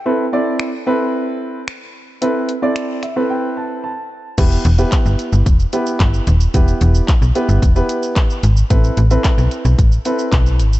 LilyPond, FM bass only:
\new Staff \with { instrumentName = "FM bass" } { \clef bass \time 4/4 \key e \minor \tempo 4 = 111 r1 | r1 | e,,8 e,,8 r16 g,,16 r16 g,,16 e,,8 r8 g,,8 dis,,8 | e,,8 e,,8 r16 b,,16 r16 g,,16 e,,8 r4 gis,,8 |
a,,8 a,,8 r16 b,,16 r16 b,,16 a,,8 r8 b,,8 gis,,8 | }